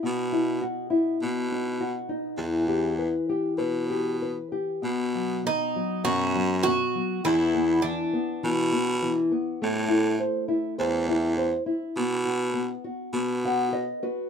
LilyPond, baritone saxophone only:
\new Staff \with { instrumentName = "Baritone saxophone" } { \clef bass \time 4/4 \key b \phrygian \tempo 4 = 101 b,4. r8 b,2 | e,2 b,2 | b,4. r8 fis,2 | e,2 b,2 |
a,4. r8 e,2 | b,2 b,2 | }